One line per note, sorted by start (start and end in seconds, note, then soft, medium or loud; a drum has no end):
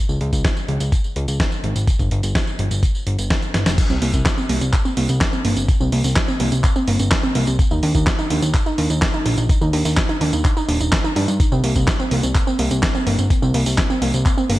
0.09 0.20 C#2 medium
0.09 tambourine soft
0.21 0.32 C#2 loud
0.21 closed hi-hat medium
0.33 0.43 C#2 medium
0.33 kick medium
0.33 closed hi-hat medium
0.33 tambourine medium
0.45 kick loud
0.45 snare loud
0.45 closed hi-hat medium
0.45 tambourine soft
0.57 tambourine soft
0.68 0.79 C#2 medium
0.68 closed hi-hat medium
0.80 0.91 C#2 medium
0.80 closed hi-hat medium
0.80 tambourine medium
0.92 kick loud
0.92 closed hi-hat medium
0.92 tambourine soft
1.04 tambourine soft
1.16 1.27 C#2 medium
1.16 closed hi-hat medium
1.28 1.39 C#2 medium
1.28 closed hi-hat medium
1.28 tambourine medium
1.40 kick loud
1.40 snare loud
1.40 closed hi-hat medium
1.40 tambourine soft
1.52 tambourine soft
1.64 1.74 G#1 medium
1.64 closed hi-hat medium
1.76 1.86 G#1 medium
1.76 closed hi-hat medium
1.76 tambourine medium
1.87 kick loud
1.87 closed hi-hat medium
1.87 tambourine soft
1.99 2.10 G1 medium
1.99 kick medium
1.99 closed hi-hat soft
1.99 tambourine soft
2.11 2.22 G1 medium
2.11 closed hi-hat medium
2.23 2.34 G1 medium
2.23 closed hi-hat medium
2.23 tambourine medium
2.35 kick loud
2.35 snare loud
2.35 closed hi-hat medium
2.35 tambourine soft
2.47 tambourine soft
2.59 2.70 G1 loud
2.59 closed hi-hat medium
2.71 2.82 G1 medium
2.71 closed hi-hat medium
2.71 tambourine medium
2.83 kick loud
2.83 closed hi-hat medium
2.83 tambourine soft
2.95 tambourine soft
3.07 3.17 G1 medium
3.07 closed hi-hat medium
3.18 3.29 G1 medium
3.18 closed hi-hat medium
3.18 tambourine medium
3.30 kick loud
3.30 snare loud
3.30 closed hi-hat medium
3.30 tambourine soft
3.42 closed hi-hat soft
3.42 tambourine soft
3.54 3.65 G1 medium
3.54 snare medium
3.54 closed hi-hat medium
3.66 3.77 F1 medium
3.66 snare medium
3.66 closed hi-hat medium
3.66 tambourine medium
3.78 kick loud
3.78 closed hi-hat medium
3.78 crash loud
3.78 tambourine soft
3.90 4.01 C2 medium
3.90 4.01 C4 loud
3.90 tambourine soft
4.02 4.12 C2 medium
4.02 4.13 A#3 loud
4.02 open hi-hat loud
4.14 4.24 C2 medium
4.14 4.24 C4 medium
4.14 kick medium
4.14 closed hi-hat medium
4.14 tambourine medium
4.26 kick loud
4.26 snare loud
4.26 clap medium
4.26 closed hi-hat medium
4.26 tambourine soft
4.38 4.49 C4 loud
4.38 tambourine soft
4.49 4.60 C2 loud
4.49 4.61 A#3 loud
4.49 open hi-hat loud
4.61 4.72 C2 medium
4.61 4.72 C4 medium
4.61 closed hi-hat medium
4.61 tambourine medium
4.73 kick loud
4.73 clap medium
4.73 closed hi-hat medium
4.73 tambourine soft
4.85 4.96 C4 loud
4.85 tambourine soft
4.97 5.08 C2 loud
4.97 5.08 A#3 loud
4.97 open hi-hat loud
5.09 5.20 C2 medium
5.09 5.20 C4 medium
5.09 closed hi-hat medium
5.09 tambourine medium
5.21 kick loud
5.21 snare loud
5.21 clap medium
5.21 closed hi-hat medium
5.21 tambourine soft
5.33 5.44 C4 loud
5.33 tambourine soft
5.45 5.55 G1 loud
5.45 5.56 A#3 loud
5.45 open hi-hat loud
5.57 5.67 G1 medium
5.57 5.67 C4 medium
5.57 closed hi-hat medium
5.57 tambourine medium
5.68 kick loud
5.68 closed hi-hat medium
5.68 tambourine soft
5.80 5.91 C2 medium
5.80 5.92 C4 loud
5.80 tambourine soft
5.92 6.03 C2 loud
5.92 6.04 A#3 loud
5.92 open hi-hat loud
6.04 6.15 C2 medium
6.04 6.15 C4 medium
6.04 open hi-hat medium
6.04 tambourine medium
6.16 kick loud
6.16 snare loud
6.16 clap medium
6.16 closed hi-hat medium
6.16 tambourine soft
6.28 6.39 C4 loud
6.28 tambourine soft
6.40 6.51 C2 loud
6.40 6.51 A#3 loud
6.40 open hi-hat loud
6.52 6.63 C2 medium
6.52 6.63 C4 medium
6.52 closed hi-hat medium
6.52 tambourine medium
6.64 kick loud
6.64 clap medium
6.64 closed hi-hat medium
6.64 tambourine soft
6.76 6.87 C4 loud
6.76 tambourine soft
6.88 6.98 G1 loud
6.88 6.99 A#3 loud
6.88 open hi-hat loud
6.99 7.10 G1 medium
6.99 7.10 C4 medium
6.99 closed hi-hat medium
6.99 tambourine medium
7.11 kick loud
7.11 snare loud
7.11 clap loud
7.11 closed hi-hat medium
7.11 tambourine soft
7.23 7.35 C4 loud
7.23 tambourine soft
7.35 7.46 C2 loud
7.35 7.47 A#3 loud
7.35 open hi-hat loud
7.47 7.58 C2 medium
7.47 7.58 C4 medium
7.47 closed hi-hat medium
7.47 tambourine medium
7.59 kick loud
7.59 closed hi-hat medium
7.59 tambourine soft
7.71 7.82 D#2 medium
7.71 7.82 D#4 loud
7.71 tambourine soft
7.83 7.93 D#2 loud
7.83 7.94 D4 loud
7.83 open hi-hat loud
7.95 8.05 D#2 medium
7.95 8.05 D#4 medium
7.95 kick medium
7.95 closed hi-hat medium
7.95 tambourine medium
8.07 kick loud
8.07 snare loud
8.07 clap medium
8.07 closed hi-hat medium
8.07 tambourine soft
8.19 8.30 D#4 loud
8.19 tambourine soft
8.30 8.41 D#2 loud
8.30 8.42 D4 loud
8.30 open hi-hat loud
8.42 8.53 D#2 medium
8.42 8.53 D#4 medium
8.42 closed hi-hat medium
8.42 tambourine medium
8.54 kick loud
8.54 clap medium
8.54 closed hi-hat medium
8.54 tambourine soft
8.66 8.77 D#4 loud
8.66 tambourine soft
8.78 8.89 D#2 loud
8.78 8.89 D4 loud
8.78 open hi-hat loud
8.90 9.01 D#2 medium
8.90 9.01 D#4 medium
8.90 closed hi-hat medium
8.90 tambourine medium
9.02 kick loud
9.02 snare loud
9.02 clap loud
9.02 closed hi-hat medium
9.02 tambourine soft
9.14 9.25 D#4 loud
9.14 tambourine soft
9.26 9.36 A#1 medium
9.26 9.37 D4 loud
9.26 open hi-hat loud
9.38 9.48 A#1 medium
9.38 9.48 D#4 medium
9.38 closed hi-hat medium
9.38 tambourine medium
9.49 kick loud
9.49 closed hi-hat medium
9.49 tambourine medium
9.61 9.72 D#2 medium
9.61 9.73 D#4 loud
9.61 tambourine soft
9.73 9.84 D#2 loud
9.73 9.85 D4 loud
9.73 open hi-hat loud
9.85 9.96 D#2 medium
9.85 9.96 D#4 medium
9.85 open hi-hat medium
9.85 tambourine medium
9.97 kick loud
9.97 snare loud
9.97 clap medium
9.97 tambourine soft
10.09 10.20 D#4 loud
10.09 closed hi-hat soft
10.09 tambourine soft
10.21 10.32 D#2 loud
10.21 10.32 D4 loud
10.21 open hi-hat loud
10.33 10.43 D#2 medium
10.33 10.44 D#4 medium
10.33 closed hi-hat soft
10.33 tambourine medium
10.45 kick loud
10.45 clap medium
10.45 closed hi-hat medium
10.45 tambourine medium
10.57 10.68 D#4 loud
10.57 tambourine soft
10.68 10.79 D#1 loud
10.68 10.80 D4 loud
10.68 open hi-hat loud
10.80 10.91 D#1 medium
10.80 10.91 D#4 medium
10.80 closed hi-hat medium
10.80 tambourine medium
10.92 kick loud
10.92 snare loud
10.92 clap medium
10.92 closed hi-hat medium
10.92 tambourine medium
11.04 11.16 D#4 loud
11.04 tambourine soft
11.16 11.27 G2 loud
11.16 11.28 D4 loud
11.16 open hi-hat loud
11.28 11.39 G2 medium
11.28 11.39 D#4 medium
11.28 closed hi-hat medium
11.28 tambourine medium
11.40 kick loud
11.40 closed hi-hat medium
11.40 tambourine medium
11.52 11.62 C2 medium
11.52 11.63 C4 loud
11.52 tambourine soft
11.64 11.74 C2 medium
11.64 11.75 A#3 loud
11.64 open hi-hat loud
11.76 11.86 C2 medium
11.76 11.86 C4 medium
11.76 kick medium
11.76 closed hi-hat medium
11.76 tambourine medium
11.88 kick loud
11.88 snare loud
11.88 clap medium
11.88 closed hi-hat medium
11.88 tambourine soft
11.99 12.11 C4 loud
11.99 tambourine soft
12.11 12.22 C2 medium
12.11 12.23 A#3 loud
12.11 open hi-hat loud
12.23 12.34 C2 medium
12.23 12.34 C4 medium
12.23 closed hi-hat medium
12.23 tambourine medium
12.35 kick loud
12.35 clap medium
12.35 closed hi-hat medium
12.35 tambourine medium
12.47 12.58 C4 loud
12.47 tambourine soft
12.59 12.70 C2 loud
12.59 12.70 A#3 loud
12.59 open hi-hat loud
12.71 12.82 C2 medium
12.71 12.82 C4 medium
12.71 closed hi-hat medium
12.71 tambourine medium
12.83 kick loud
12.83 snare loud
12.83 clap medium
12.83 closed hi-hat medium
12.83 tambourine medium
12.95 13.06 C4 loud
12.95 tambourine soft
13.07 13.17 G1 medium
13.07 13.18 A#3 loud
13.07 open hi-hat loud
13.18 13.29 G1 medium
13.18 13.29 C4 medium
13.18 closed hi-hat soft
13.18 tambourine medium
13.30 kick loud
13.30 closed hi-hat medium
13.30 tambourine medium
13.42 13.53 C2 medium
13.42 13.54 C4 loud
13.42 tambourine soft
13.54 13.65 C2 loud
13.54 13.66 A#3 loud
13.54 open hi-hat loud
13.66 13.77 C2 medium
13.66 13.77 C4 medium
13.66 open hi-hat medium
13.66 tambourine medium
13.78 kick loud
13.78 snare loud
13.78 clap medium
13.78 closed hi-hat medium
13.78 tambourine soft
13.90 14.01 C4 loud
13.90 tambourine soft
14.02 14.12 C2 loud
14.02 14.13 A#3 loud
14.02 open hi-hat loud
14.14 14.24 C2 medium
14.14 14.24 C4 medium
14.14 closed hi-hat medium
14.14 tambourine medium
14.26 kick loud
14.26 clap medium
14.26 closed hi-hat medium
14.26 tambourine medium
14.38 14.49 C4 loud
14.38 tambourine soft
14.49 14.59 G1 medium
14.49 14.59 A#3 loud
14.49 open hi-hat loud